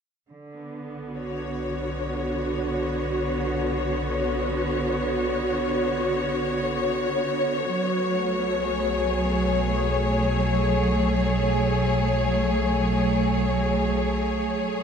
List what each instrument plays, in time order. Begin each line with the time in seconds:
0.31 synth drone B1, string section D3
0.56 string section B3
1.09 string section F#4
1.18 string section C#5
7.71 synth drone B1, string section F#3
8.05 string section A3
8.55 string section G#4